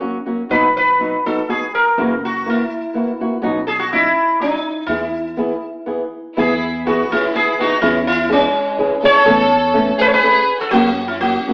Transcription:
Already playing: sitar F#4
0.00 nylon-string guitar F#3 A#3 C#4 F#4
0.26 nylon-string guitar F#3 A#3 C#4 F#4
0.49 upright bass B1, nylon-string guitar B2 F#3 B3 D#4 F#4, sitar B4
0.77 sitar B4
0.99 nylon-string guitar F#3 B3 D#4 F#4
1.25 nylon-string guitar F#3 B3 D#4 F#4, sitar A4
1.48 nylon-string guitar F#3 B3 D#4 F#4, sitar G#4
1.75 sitar A#4
1.97 upright bass F#1, nylon-string guitar F#2 C#3 E3 A#3 E4 F#4
2.25 sitar F#4
2.46 nylon-string guitar E3 A#3 E4 F#4
2.50 sitar E4
2.94 nylon-string guitar E3 A#3 E4 F#4
3.20 nylon-string guitar E3 A#3 E4 F#4
3.42 upright bass B1, nylon-string guitar B2 F#3 C#4 D#4 F#4
3.67 sitar G#4 A4
3.79 sitar F#4
3.93 nylon-string guitar F#3 C#4 D#4 F#4, sitar E4
4.40 nylon-string guitar F#3 C#4 D#4 F#4, sitar D#4
4.87 upright bass E2, nylon-string guitar E3 B3 E4 G#4, sitar E4
5.37 nylon-string guitar E3 B3 E4 G#4
5.86 nylon-string guitar E3 B3 E4 G#4
6.37 upright bass E2, nylon-string guitar E3 B3 E4 G#4, violin section E4, sitar G#4
6.86 nylon-string guitar E3 B3 E4 G#4, violin section B3, sitar F#4
7.11 nylon-string guitar E3 B3 E4 G#4, violin section C#4, sitar E4
7.34 nylon-string guitar E3 B3 E4 G#4, violin section E4, sitar G#4
7.59 nylon-string guitar E3 B3 E4 G#4, violin section D#4, sitar F#4
7.81 upright bass E2, nylon-string guitar E3 C#4 E4 G#4, violin section C#4, sitar E4
8.07 violin section C#4, sitar E4
8.29 nylon-string guitar E3 C#4 E4 G#4, violin section G#3, sitar C#4
8.78 nylon-string guitar E3 C#4 E4 G#4
9.02 nylon-string guitar E3 C#4 E4 G#4, violin section A4, sitar C#5
9.25 upright bass E2, nylon-string guitar E3 A3 C#4 A4
9.73 nylon-string guitar E3 A3 C#4 A4
9.97 nylon-string guitar E3 A3 C#4 A4, violin section G#4, sitar B4
10.04 violin section A4, sitar C#5
10.12 violin section G#4, sitar B4
10.21 nylon-string guitar E3 A3 C#4 A4
10.60 violin section F#4, sitar A4
10.71 upright bass F#2, nylon-string guitar F#2 C#3 F#3 A#3 C#4 F#4, violin section C#4, sitar F#4
11.08 violin section C#4, sitar E4
11.20 nylon-string guitar F#3 A#3 C#4 F#4, violin section C#4, sitar F#4
11.47 nylon-string guitar F#3 A#3 C#4 F#4

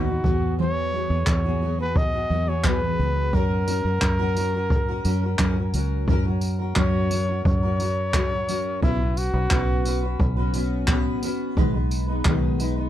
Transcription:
Already playing: fingered electric bass D#2, trumpet F#4
0.07 steel-string acoustic guitar F#3 B3 D#4 B4
0.24 fingered electric bass E2, steel-string acoustic guitar F#3 B3 F#4 G#4, kick
0.59 steel-string acoustic guitar E3 F#3 B3 F#4 G#4, trumpet C#5
0.93 steel-string acoustic guitar F#3 B3 F#4 G#4
1.10 fingered electric bass E2, steel-string acoustic guitar B3 F#4 G#4
1.27 fingered electric bass E2, trumpet C#5, kick, clap
1.45 steel-string acoustic guitar E3 F#3 B3 F#4 G#4
1.61 steel-string acoustic guitar F#3 B3 F#4 G#4
1.79 steel-string acoustic guitar B3 F#4 G#4, trumpet B4
1.96 trumpet D#5, kick
2.12 steel-string acoustic guitar B3 F#4 G#4
2.29 fingered electric bass E2, steel-string acoustic guitar F#3 B3 F#4 G#4
2.46 steel-string acoustic guitar B3 F#4 G#4, trumpet C#5
2.64 steel-string acoustic guitar E3 F#3 B3 F#4 G#4, trumpet B4, kick, clap
2.81 steel-string acoustic guitar B3 F#4 G#4
2.98 fingered electric bass C#2, steel-string acoustic guitar F#3 B3 F#4 G#4
3.33 fingered electric bass F#2, steel-string acoustic guitar F#3 C#4 F#4 A#4, trumpet A#4, kick
3.67 steel-string acoustic guitar F#3 C#4 F#4 A#4, tambourine
3.84 fingered electric bass F#2, steel-string acoustic guitar C#4 F#4 A#4
4.02 fingered electric bass F#2, kick, clap
4.19 steel-string acoustic guitar F#3 C#4 F#4 A#4
4.37 steel-string acoustic guitar F#3 C#4 F#4 A#4, tambourine
4.54 steel-string acoustic guitar C#4 F#4 A#4
4.70 kick
4.88 steel-string acoustic guitar C#4 F#4 A#4
5.05 fingered electric bass F#2, steel-string acoustic guitar F#3 C#4 F#4 A#4, tambourine
5.23 steel-string acoustic guitar C#4 F#4 A#4
5.39 fingered electric bass F#2, steel-string acoustic guitar F#3 C#4 F#4 A#4, kick, clap
5.57 steel-string acoustic guitar C#4 F#4 A#4
5.74 fingered electric bass C#2, steel-string acoustic guitar F#3 C#4 F#4 A#4, tambourine
6.08 fingered electric bass F#2, steel-string acoustic guitar F#3 C#4 F#4 A#4, kick
6.25 steel-string acoustic guitar C#4 F#4 A#4
6.41 tambourine
6.59 steel-string acoustic guitar C#4 F#4 A#4
6.76 fingered electric bass F#2, steel-string acoustic guitar F#3 C#4 F#4 A#4, trumpet C#5, kick, clap
7.11 steel-string acoustic guitar F#3 C#4 F#4 A#4, tambourine
7.28 steel-string acoustic guitar C#4 F#4 A#4
7.45 fingered electric bass F#2, trumpet C#5, kick
7.63 steel-string acoustic guitar C#4 F#4 A#4
7.79 steel-string acoustic guitar F#3 C#4 F#4 A#4, tambourine
8.14 steel-string acoustic guitar F#3 C#4 F#4 A#4, kick, clap
8.31 steel-string acoustic guitar C#4 F#4 A#4
8.48 steel-string acoustic guitar F#3 C#4 F#4 A#4, tambourine
8.82 fingered electric bass B1, steel-string acoustic guitar B3 C#4 F#4 B4, trumpet E4, kick
8.99 steel-string acoustic guitar C#4 F#4 B4
9.17 trumpet F#4, tambourine
9.33 fingered electric bass B1, steel-string acoustic guitar C#4 F#4 B4
9.51 fingered electric bass B1, steel-string acoustic guitar B3 C#4 F#4 B4, kick, clap
9.86 steel-string acoustic guitar B3 C#4 F#4 B4, tambourine
10.02 steel-string acoustic guitar C#4 F#4 B4
10.20 fingered electric bass B1, kick
10.37 steel-string acoustic guitar C#4 F#4 B4
10.54 steel-string acoustic guitar B3 C#4 F#4 B4, tambourine
10.88 steel-string acoustic guitar B3 C#4 F#4 B4, kick, clap
11.22 steel-string acoustic guitar B3 C#4 F#4 B4, tambourine
11.57 fingered electric bass B1, steel-string acoustic guitar B2 D#3 G#3 B3 D#4 B4, kick
11.74 steel-string acoustic guitar G#3 B3 D#4 B4
11.91 tambourine
12.07 steel-string acoustic guitar G#3 B3 D#4 B4
12.25 fingered electric bass B1, steel-string acoustic guitar B2 D#3 G#3 B3 D#4 B4, kick, clap
12.59 steel-string acoustic guitar G#3 B3 D#4 B4, tambourine
12.76 steel-string acoustic guitar G#3 B3 D#4 B4

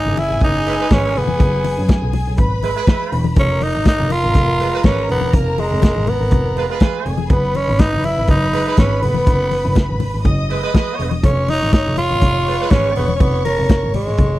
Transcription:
Already playing: tenor saxophone D#4, violin section G#4 G#5
0.06 double bass F#1
0.17 tenor saxophone E4, open hi-hat, muted conga
0.30 double bass G#1
0.40 double bass F#1, tenor saxophone D#4, kick, closed hi-hat
0.66 horn section G#3 E4 B4, open hi-hat
0.79 horn section G#3 E4 B4
0.90 double bass G#1, horn section G#3 E4 B4, tenor saxophone C#4, kick, snare, closed hi-hat, high conga
1.15 double bass F1, tenor saxophone B3, open hi-hat
1.28 high conga
1.40 double bass F#1, kick, closed hi-hat, muted conga
1.64 open hi-hat, muted conga
1.78 double bass F#2
1.89 kick, snare, closed hi-hat, high conga
2.02 double bass B1
2.13 open hi-hat, muted conga, low conga
2.27 double bass B1
2.37 double bass G#1, violin section B4 B5, kick, closed hi-hat, low conga
2.63 horn section G#3 E4 B4, open hi-hat, muted conga
2.76 horn section G#3 E4 B4
2.87 horn section G#3 E4 B4, kick, snare, closed hi-hat, high conga
3.12 double bass E1, open hi-hat
3.24 high conga
3.36 double bass F1, tenor saxophone C#4, violin section A#4 A#5, kick, closed hi-hat, muted conga
3.61 tenor saxophone D#4, open hi-hat, muted conga
3.75 double bass G#1
3.85 tenor saxophone D#4, kick, snare, closed hi-hat, high conga
3.99 double bass F1
4.10 tenor saxophone F4, open hi-hat, muted conga
4.23 double bass G#1
4.34 double bass F1, kick, closed hi-hat
4.60 horn section G#3 F4 B4, open hi-hat
4.73 horn section G#3 F4 B4
4.83 double bass G#1, horn section G#3 F4 B4, tenor saxophone C#4, kick, snare, closed hi-hat, high conga
5.09 double bass E1, tenor saxophone B3, open hi-hat
5.21 high conga
5.33 double bass F1, tenor saxophone A#3, kick, closed hi-hat, muted conga
5.58 tenor saxophone G#3, open hi-hat, muted conga
5.71 double bass F1
5.82 kick, snare, closed hi-hat, high conga
5.96 double bass G#1
6.07 tenor saxophone B3, open hi-hat, muted conga, low conga
6.20 double bass G#1
6.31 double bass F1, kick, closed hi-hat, low conga
6.56 horn section G#3 F4 B4, open hi-hat, muted conga
6.69 horn section G#3 F4 B4
6.80 horn section G#3 F4 B4, violin section G#4 G#5, kick, snare, closed hi-hat, high conga
7.06 double bass F1, open hi-hat
7.18 high conga
7.29 double bass F#1, tenor saxophone B3, violin section B4 B5, kick, closed hi-hat, muted conga
7.54 tenor saxophone C#4, open hi-hat, muted conga
7.68 double bass G#1
7.79 tenor saxophone D#4, kick, snare, closed hi-hat, high conga
7.93 double bass F#1
8.03 tenor saxophone E4, open hi-hat, muted conga
8.17 double bass G#1
8.27 double bass F#1, tenor saxophone D#4, kick, closed hi-hat
8.53 horn section G#3 E4 B4, open hi-hat, muted conga
8.67 horn section G#3 E4 B4
8.77 double bass G#1, horn section G#3 E4 B4, tenor saxophone C#4, kick, snare, closed hi-hat, high conga
9.02 double bass F1, tenor saxophone B3, open hi-hat
9.14 high conga
9.26 double bass F#1, kick, closed hi-hat, muted conga
9.51 open hi-hat, muted conga
9.65 double bass F#1
9.75 kick, snare, closed hi-hat, high conga
9.89 double bass G#1
10.00 open hi-hat, muted conga, low conga
10.14 double bass G#1
10.25 double bass F#1, violin section D#5 D#6, kick, closed hi-hat, low conga
10.50 horn section G#3 E4 B4, open hi-hat
10.63 horn section G#3 E4 B4
10.74 horn section G#3 E4 B4, kick, snare, closed hi-hat, high conga
10.99 double bass E1, open hi-hat
11.11 high conga
11.24 double bass F1, tenor saxophone C#4, violin section C#5 C#6, kick, closed hi-hat, muted conga
11.48 tenor saxophone D#4, open hi-hat, muted conga
11.62 double bass G#1
11.72 tenor saxophone D#4, kick, snare, closed hi-hat, high conga
11.87 double bass F1
11.97 tenor saxophone F4, open hi-hat, muted conga
12.10 double bass G#1
12.21 double bass F1, kick, closed hi-hat
12.47 horn section G#3 F4 B4, open hi-hat
12.60 horn section G#3 F4 B4
12.70 double bass G#1, horn section G#3 F4 B4, tenor saxophone C#4, kick, snare, closed hi-hat, high conga
12.95 double bass E1, tenor saxophone B3, open hi-hat
13.08 high conga
13.16 tenor saxophone C#4
13.20 double bass F1, tenor saxophone B3, kick, closed hi-hat, muted conga
13.45 tenor saxophone A#3, open hi-hat, muted conga
13.58 double bass F1
13.69 kick, snare, closed hi-hat, high conga
13.83 double bass G#1
13.94 tenor saxophone G#3, open hi-hat, muted conga, low conga
14.07 double bass G#1
14.17 double bass F1, kick, closed hi-hat, low conga

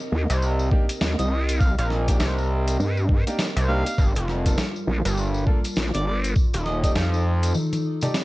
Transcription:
Already playing: analog synth pad C4 A#4 D#5
0.00 tambourine
0.12 wobble bass D#2
0.30 analog synth bass C2, closed hi-hat, tambourine
0.42 tambourine
0.59 tambourine
0.71 grand piano A#3 D4 D#4 G4, kick
0.89 closed hi-hat, tambourine
1.01 wobble bass D#2, snare, tambourine
1.19 wobble bass C2, harmonica D#5, closed hi-hat, tambourine
1.30 harmonica D#5
1.49 closed hi-hat, tambourine
1.60 harmonica F5, kick, tambourine
1.78 analog synth bass A#1, harmonica F5, closed hi-hat, tambourine
1.90 snare
2.08 grand piano A#3 D4 D#4 G4, kick, closed hi-hat, tambourine
2.19 analog synth bass C2, snare, tambourine
2.38 tambourine
2.68 closed hi-hat, tambourine
2.80 wobble bass G2, tambourine
2.97 tambourine
3.09 kick
3.27 grand piano A#3 D4 D#4 G4, closed hi-hat, tambourine
3.39 snare, tambourine
3.57 analog synth bass C2, closed hi-hat, tambourine
3.69 grand piano A#3 D4 D#4 G4, harmonica F5
3.86 closed hi-hat, tambourine
3.98 analog synth bass G1, analog synth pad G3 F4, kick, tambourine
4.15 analog synth bass F1, closed hi-hat, tambourine
4.28 snare
4.46 grand piano A#3 D4 F4 A4, kick, closed hi-hat, tambourine
4.58 snare, tambourine
4.76 tambourine
4.87 wobble bass A#1
5.05 analog synth bass G1, closed hi-hat, tambourine
5.17 tambourine
5.34 tambourine
5.47 grand piano A#3 D4 F4 A4, kick
5.64 closed hi-hat, tambourine
5.76 wobble bass A#1, snare, tambourine
5.94 wobble bass G1, harmonica D5, closed hi-hat, tambourine
6.07 harmonica D5
6.24 closed hi-hat, tambourine
6.36 analog synth pad D#4 A4, kick, tambourine
6.54 analog synth bass D#1, closed hi-hat, tambourine
6.66 harmonica D#5, snare
6.84 grand piano D#4 G4 A4 D5, harmonica D#5, kick, closed hi-hat, tambourine
6.96 analog synth bass F2, snare, tambourine
7.14 tambourine
7.43 closed hi-hat, tambourine
7.54 high tom, tambourine
7.73 closed hi-hat, high tom, tambourine
8.01 grand piano D#4 G4 A4 D5, closed hi-hat, mid tom, tambourine
8.14 snare, mid tom, tambourine

